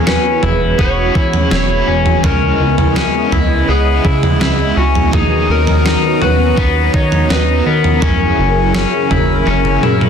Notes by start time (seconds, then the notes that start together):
Already playing: E1 E3 G#3 B3 C#4 F#4 G#4
0.07 C#4 B4, snare
0.43 E1 E4, floor tom
0.78 E1 G#3 B3 C#4 G#4 C#5, kick
0.83 B4
1.15 E2 E4, kick
1.33 floor tom
1.50 E1 G#3 C#4 E4 G#4 C#5, snare
1.55 B4
1.87 E1 C#4
2.06 floor tom
2.23 C#2 C#3 G#3 B3 C#4 E4 A#4 D#5, kick, floor tom
2.60 C#2
2.78 floor tom
2.95 C#3 G#3 B3 C#4, snare
3.00 E4
3.32 C#2 E4, floor tom
3.68 C#2 C#3 G#3 B3 G#4
3.72 E4
4.05 C#3 E4, kick
4.23 floor tom
4.40 C#2 C#3 G#3 B3 E4, snare
4.44 E4
4.77 C#2 C#4 F#4
4.95 floor tom
5.11 D#2 D#3 F#3 B3 C#4 D#4 F#4 G#4 A#5, kick, floor tom
5.17 D#4
5.49 D#2 A#4
5.67 floor tom
5.86 D#4, snare
6.21 D#2 F#4 B4, floor tom
6.56 D#2 F#3 B3 D#4, kick
6.94 D#3 D#4 C#5, kick
7.12 floor tom
7.29 D#2 F#3 B3 D#4 B4, snare
7.66 D#2 B3 A#4
7.84 floor tom
8.00 F#1 F#2 C#3 E3 F#3 C#4 E4 G#4 A#4, kick, floor tom
8.05 A#3 E4
8.38 F#1
8.75 C#4, snare
9.11 F#1 E4, floor tom
9.46 F#1 C#3 E3 A#3 C#4, high tom
9.50 E4
9.65 high tom
9.83 F#2 E4, mid tom
10.01 mid tom